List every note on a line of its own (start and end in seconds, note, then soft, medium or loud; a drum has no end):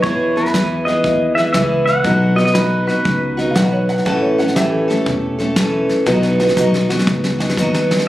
0.02 0.36 E2 medium
0.02 0.86 E2 medium
0.02 0.37 B2 medium
0.02 0.37 E3 medium
0.02 0.36 B3 medium
0.02 0.36 E4 medium
0.02 0.34 G#4 medium
0.02 0.37 C#5 medium
0.02 kick loud
0.02 snare soft
0.36 0.52 E3 soft
0.36 0.53 B3 soft
0.36 0.54 E4 soft
0.36 0.53 G#4 soft
0.36 0.89 B4 medium
0.36 snare soft
0.46 snare soft
0.53 0.86 E3 soft
0.53 0.87 B3 soft
0.53 0.86 E4 soft
0.53 0.85 G#4 medium
0.53 kick medium
0.53 snare medium
0.53 hi-hat pedal medium
0.85 1.38 E3 soft
0.85 1.37 B3 soft
0.85 1.36 E4 soft
0.85 1.35 G#4 soft
0.85 1.33 D#5 medium
0.85 snare soft
1.04 1.47 D#2 medium
1.04 kick loud
1.04 snare soft
1.35 1.52 E3 soft
1.35 1.53 B3 soft
1.35 1.54 E4 soft
1.35 1.54 G#4 soft
1.35 1.40 E5 medium
1.35 snare soft
1.53 1.97 C#2 medium
1.53 2.04 E3 medium
1.53 2.03 B3 medium
1.53 2.05 E4 medium
1.53 2.05 G#4 medium
1.53 1.62 E5 medium
1.53 kick medium
1.53 snare medium
1.53 hi-hat pedal medium
1.86 2.38 F#5 medium
1.86 snare soft
2.04 2.87 B1 medium
2.04 2.37 B2 medium
2.04 2.37 F#3 medium
2.04 2.37 B3 medium
2.04 2.36 D#4 medium
2.04 2.35 F#4 medium
2.04 kick loud
2.04 snare soft
2.36 2.52 B3 soft
2.36 2.53 D#4 soft
2.36 2.54 F#4 medium
2.36 2.44 D#5 medium
2.36 snare soft
2.45 2.55 D#5 medium
2.45 snare soft
2.53 2.87 F#3 soft
2.53 2.87 B3 medium
2.53 2.87 D#4 medium
2.53 2.86 F#4 medium
2.53 2.86 B4 medium
2.53 kick medium
2.53 snare medium
2.53 hi-hat pedal medium
2.87 3.39 B3 soft
2.87 3.37 D#4 soft
2.87 3.36 F#4 soft
2.87 3.84 B4 medium
2.87 snare soft
3.05 3.48 C#2 medium
3.05 kick loud
3.05 snare soft
3.37 3.54 B3 soft
3.37 3.55 D#4 soft
3.37 3.55 F#4 medium
3.37 snare soft
3.51 4.05 F#3 medium
3.51 3.55 F5 medium
3.55 3.98 B1 medium
3.55 4.05 B3 medium
3.55 4.06 D#4 medium
3.55 4.06 F#4 medium
3.55 3.72 F#5 medium
3.55 kick medium
3.55 snare loud
3.55 hi-hat pedal medium
3.73 3.89 C#5 medium
3.89 4.04 F#5 medium
3.89 snare soft
3.98 snare soft
4.05 4.88 A1 medium
4.05 4.38 A2 medium
4.05 4.39 E3 medium
4.05 4.39 A3 medium
4.05 4.39 C#4 medium
4.05 4.37 A4 medium
4.05 4.22 F#5 medium
4.05 kick loud
4.05 snare soft
4.22 4.38 C#5 medium
4.38 4.55 A3 medium
4.38 4.56 C#4 medium
4.38 4.56 A4 medium
4.38 4.55 F#5 medium
4.38 snare soft
4.48 snare soft
4.55 4.89 E3 medium
4.55 4.89 A3 medium
4.55 4.88 C#4 medium
4.55 5.52 G4 medium
4.55 4.87 A4 medium
4.55 5.53 E5 medium
4.55 kick medium
4.55 snare loud
4.55 hi-hat pedal medium
4.88 5.40 A3 soft
4.88 5.39 C#4 medium
4.88 5.37 A4 medium
4.88 snare soft
5.06 5.88 E1 medium
5.06 kick loud
5.06 snare soft
5.39 5.56 A3 soft
5.39 5.57 C#4 medium
5.39 5.56 A4 medium
5.39 snare soft
5.56 6.06 E3 medium
5.56 6.07 A3 medium
5.56 6.07 C#4 medium
5.56 6.07 A4 medium
5.56 kick medium
5.56 snare loud
5.56 hi-hat pedal medium
5.89 snare soft
6.06 6.48 B1 medium
6.06 6.39 B2 medium
6.06 6.40 F#3 medium
6.06 6.40 B3 medium
6.06 6.40 D#4 medium
6.06 6.39 F#4 medium
6.06 kick loud
6.06 snare medium
6.23 snare soft
6.40 6.56 B3 medium
6.40 6.57 D#4 soft
6.40 6.57 F#4 medium
6.40 snare medium
6.48 snare soft
6.57 7.00 B1 medium
6.57 6.90 F#3 medium
6.57 6.90 B3 medium
6.57 6.89 D#4 medium
6.57 6.88 F#4 medium
6.57 kick medium
6.57 snare medium
6.57 hi-hat pedal medium
6.74 snare medium
6.89 7.40 B3 medium
6.89 7.39 D#4 medium
6.89 7.37 F#4 medium
6.89 snare medium
6.99 snare medium
7.07 7.50 C#2 medium
7.07 kick loud
7.07 snare medium
7.24 snare medium
7.39 7.56 B3 soft
7.39 7.57 D#4 soft
7.39 7.57 F#4 medium
7.39 snare medium
7.49 snare medium
7.56 8.00 D#2 medium
7.56 8.07 F#3 medium
7.56 8.06 B3 medium
7.56 8.07 D#4 medium
7.56 8.08 F#4 medium
7.56 kick medium
7.56 snare medium
7.56 hi-hat pedal medium
7.74 snare medium
7.91 snare medium
7.99 snare medium